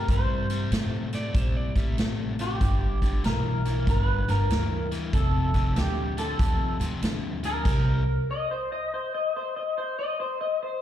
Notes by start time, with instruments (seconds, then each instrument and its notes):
Already playing: clean electric guitar A#4
0.08 upright bass G2, overdriven electric guitar C3 G3, clean electric guitar C5, kick, snare, closed hi-hat
0.50 overdriven electric guitar C3 G3, snare, closed hi-hat
0.72 upright bass A2, overdriven electric guitar C3 A3, snare, closed hi-hat
1.13 overdriven electric guitar C3 A3, electric slide guitar D5, snare, closed hi-hat
1.34 upright bass A#2, overdriven electric guitar C3 G3, electric slide guitar C5, kick, snare, closed hi-hat
1.57 electric slide guitar D5
1.75 upright bass A2, overdriven electric guitar C3 G3, electric slide guitar E5, kick, snare, closed hi-hat
1.97 upright bass A1, overdriven electric guitar C3 A3, snare, closed hi-hat
2.39 overdriven electric guitar C3 A3, clean electric guitar G4, snare, closed hi-hat
2.61 upright bass G1, overdriven electric guitar G2 D3, kick, snare, closed hi-hat
3.02 overdriven electric guitar G2 D3, kick, snare, closed hi-hat
3.24 upright bass B1, overdriven electric guitar G2 E3, clean electric guitar A#4, snare, closed hi-hat
3.65 overdriven electric guitar G2 E3, snare, closed hi-hat
3.87 upright bass G1, overdriven electric guitar G2 D3, clean electric guitar A#4, kick, snare, closed hi-hat
4.01 clean electric guitar B4
4.28 upright bass G1, overdriven electric guitar G2 D3, clean electric guitar A#4, snare, closed hi-hat
4.50 upright bass D2, overdriven electric guitar G2 E3, snare, closed hi-hat
4.91 overdriven electric guitar G2 E3, snare, closed hi-hat
5.13 upright bass F1, overdriven electric guitar F2 C3, clean electric guitar A4, kick, snare, closed hi-hat
5.54 overdriven electric guitar F2 C3, kick, snare, closed hi-hat
5.76 upright bass D2, overdriven electric guitar F2 D3, clean electric guitar G4, snare, closed hi-hat
6.17 overdriven electric guitar F2 D3, clean electric guitar A4, snare, closed hi-hat
6.39 upright bass D#2, overdriven electric guitar F2 C3, kick, snare, closed hi-hat
6.79 upright bass D2, overdriven electric guitar F2 C3, snare, closed hi-hat
7.02 upright bass D2, overdriven electric guitar F2 D3, snare, closed hi-hat
7.43 overdriven electric guitar F2 D3, clean electric guitar A#4, snare, closed hi-hat
7.65 upright bass C2, overdriven electric guitar C3 G3, kick, snare, closed hi-hat, crash
8.31 clean electric guitar D#5
8.51 clean electric guitar C5
8.72 clean electric guitar D#5
8.94 clean electric guitar C5
9.14 clean electric guitar D#5
9.36 clean electric guitar C5
9.56 clean electric guitar D#5
9.78 clean electric guitar C5
9.99 clean electric guitar D#5
10.20 clean electric guitar C5
10.41 clean electric guitar D#5
10.63 clean electric guitar C5